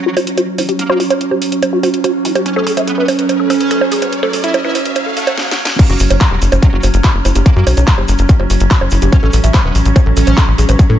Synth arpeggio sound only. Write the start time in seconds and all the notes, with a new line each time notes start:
0.06 F#4
0.17 F#4
0.37 F#4
0.58 E4
0.69 G4
0.90 F#4
1.00 F#4
1.10 C#5
1.31 G4
1.73 F#4
1.83 F#4
2.04 F#4
2.25 E4
2.35 G4
2.56 A4
2.67 A4
2.77 E5
2.98 B4
3.40 A4
3.50 A4
3.71 A4
3.92 G#4
4.02 B4
4.23 A4
4.33 A4
4.44 E5
4.65 B4
5.06 A4
5.17 A4
5.90 F#4
6.00 F#4
6.10 C#5
6.31 G4
6.73 F#4
6.83 F#4
7.04 F#4
7.25 E4
7.35 G4
7.56 F#4
7.67 F#4
7.77 C#5
7.98 G4
8.40 F#4
8.50 F#4
8.71 F#4
8.92 E4
9.02 G4
9.23 A4
9.33 A4
9.44 E5
9.65 B4
10.06 A4
10.17 A4
10.38 A4
10.58 G#4
10.69 B4
10.90 A4